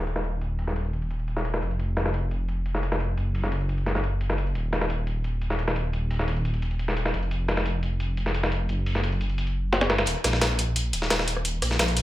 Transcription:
Already playing: D#1
0.07 closed hi-hat
0.16 snare
0.24 closed hi-hat
0.41 closed hi-hat
0.59 open hi-hat
0.67 snare
0.76 closed hi-hat
0.85 closed hi-hat
0.93 closed hi-hat
1.02 closed hi-hat
1.11 closed hi-hat
1.19 closed hi-hat
1.28 closed hi-hat
1.37 snare
1.45 closed hi-hat
1.54 snare
1.62 F1, closed hi-hat
1.71 closed hi-hat
1.80 closed hi-hat
1.97 snare, closed hi-hat
2.06 snare
2.14 closed hi-hat
2.31 closed hi-hat
2.48 closed hi-hat
2.66 closed hi-hat
2.75 snare
2.83 closed hi-hat
2.92 snare
3.00 closed hi-hat
3.17 F#1, closed hi-hat
3.35 open hi-hat
3.43 snare
3.52 closed hi-hat
3.61 closed hi-hat
3.69 closed hi-hat
3.78 closed hi-hat
3.86 snare, closed hi-hat
3.95 snare
4.04 closed hi-hat
4.21 closed hi-hat
4.30 snare
4.38 closed hi-hat
4.47 closed hi-hat
4.55 D#1, closed hi-hat
4.73 snare, closed hi-hat
4.81 snare
4.90 closed hi-hat
5.07 closed hi-hat
5.24 closed hi-hat
5.42 closed hi-hat
5.50 snare
5.59 closed hi-hat
5.68 snare
5.76 closed hi-hat
5.93 closed hi-hat
6.11 open hi-hat
6.19 snare
6.28 closed hi-hat
6.37 closed hi-hat
6.45 closed hi-hat
6.54 closed hi-hat
6.62 closed hi-hat
6.71 closed hi-hat
6.79 closed hi-hat
6.88 snare
6.97 closed hi-hat
7.05 snare
7.14 F1, closed hi-hat
7.23 closed hi-hat
7.31 closed hi-hat
7.48 snare, closed hi-hat
7.57 snare
7.66 closed hi-hat
7.83 closed hi-hat
8.00 closed hi-hat
8.17 closed hi-hat
8.26 snare
8.34 closed hi-hat
8.43 snare
8.52 closed hi-hat
8.69 F#1, closed hi-hat
8.86 open hi-hat
8.95 snare
9.04 closed hi-hat
9.12 closed hi-hat
9.21 closed hi-hat
9.30 closed hi-hat
9.38 closed hi-hat
9.47 closed hi-hat
9.73 snare, closed hi-hat
9.81 snare, closed hi-hat
9.90 snare, closed hi-hat
9.98 snare, closed hi-hat
10.07 D#1, closed hi-hat
10.24 A#1, cross-stick, snare, closed hi-hat
10.33 snare
10.41 snare, closed hi-hat
10.59 closed hi-hat
10.68 A#1
10.76 closed hi-hat
10.93 D#1, closed hi-hat
11.02 snare
11.10 D#1, snare, closed hi-hat
11.19 snare
11.28 closed hi-hat
11.36 cross-stick
11.45 closed hi-hat
11.62 A#1, cross-stick, closed hi-hat, open hi-hat
11.71 snare
11.79 snare, closed hi-hat
11.88 closed hi-hat
11.97 closed hi-hat

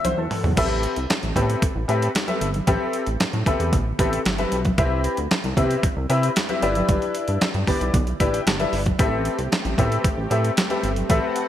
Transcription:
Already playing: D3 C4 E4 F#4
0.04 C2 C5, closed hi-hat, high tom, high conga
0.18 E2 A4
0.31 mid tom, open hi-hat
0.44 E2, floor tom, high conga
0.57 A1 C4 G4 A4 B4 E5, kick, closed hi-hat, crash, muted conga
0.83 closed hi-hat
0.96 C2, closed hi-hat
1.10 snare, closed hi-hat, high conga
1.23 A1, closed hi-hat
1.36 A2 C4 G4 A4 B4 E5, kick, closed hi-hat, low conga
1.50 closed hi-hat
1.62 kick, closed hi-hat, muted conga
1.76 A1
1.88 A2 C4 G4 A4 B4 E5, closed hi-hat
2.02 closed hi-hat
2.15 snare, closed hi-hat, high conga
2.27 C4 G4 A4 B4 E5, closed hi-hat, high conga
2.41 G1, closed hi-hat
2.54 closed hi-hat, high conga
2.67 A1 C4 G4 A4 B4 E5, kick, closed hi-hat, muted conga
2.93 closed hi-hat
3.06 A1, closed hi-hat
3.20 A2, snare, closed hi-hat, high conga
3.33 A2, closed hi-hat
3.46 C4 G4 A4 B4 E5, kick, closed hi-hat, low conga
3.60 E2, closed hi-hat
3.73 A1, kick, closed hi-hat, muted conga, low conga
3.99 A1 C4 G4 A4 B4 E5, kick, closed hi-hat, muted conga, low conga
4.13 closed hi-hat
4.25 G1, snare, closed hi-hat, high conga
4.38 C4 G4 A4 B4 E5, closed hi-hat, high conga
4.52 B1, closed hi-hat
4.65 kick, closed hi-hat, high conga
4.78 C2 C4 E4 G4 B4 E5, kick, closed hi-hat, muted conga
5.04 closed hi-hat
5.17 D2, closed hi-hat
5.31 snare, closed hi-hat, high conga
5.44 C2, closed hi-hat
5.57 C3 C4 E4 G4 B4 E5, kick, closed hi-hat, low conga
5.71 closed hi-hat
5.83 kick, closed hi-hat, muted conga
5.97 C2
6.09 C3 C4 E4 G4 B4 E5, closed hi-hat
6.23 closed hi-hat
6.36 snare, closed hi-hat, high conga
6.49 C4 E4 G4 B4 E5, closed hi-hat, high conga
6.62 G1 D4 E4 G4 B4 E5, closed hi-hat
6.75 closed hi-hat, high conga
6.88 G1, kick, closed hi-hat, muted conga
7.02 closed hi-hat
7.15 closed hi-hat
7.28 G2, closed hi-hat
7.41 G2, snare, closed hi-hat, high conga
7.54 G2, closed hi-hat
7.67 D4 E4 G4 B4 D5, kick, open hi-hat, low conga
7.81 B1, closed hi-hat
7.94 B1, kick, closed hi-hat, muted conga, low conga
8.07 closed hi-hat
8.20 A1 D4 E4 G4 B4 E5, kick, closed hi-hat, muted conga, low conga
8.34 G5, closed hi-hat
8.47 G1 A5, snare, closed hi-hat, high conga
8.59 D4 E4 G4 B4 E5, closed hi-hat, high conga
8.73 G1, open hi-hat
8.86 kick, closed hi-hat, high conga
8.99 A1 A3 C4 G4 A4 B4 E5, kick, closed hi-hat, muted conga
9.25 closed hi-hat
9.39 C2, closed hi-hat
9.52 snare, closed hi-hat, high conga
9.65 A1, closed hi-hat
9.78 A2 C4 G4 A4 B4 E5, kick, closed hi-hat, low conga
9.92 closed hi-hat
10.04 kick, closed hi-hat, muted conga
10.17 A1
10.30 A2 C4 G4 A4 B4 E5, closed hi-hat, muted conga
10.45 closed hi-hat
10.57 snare, closed hi-hat, high conga
10.70 C4 G4 A4 B4 E5, closed hi-hat, high conga
10.83 G1, closed hi-hat
10.96 closed hi-hat, high conga
11.09 A1 C4 G4 A4 B4 E5 F#5, kick, closed hi-hat, muted conga
11.36 closed hi-hat

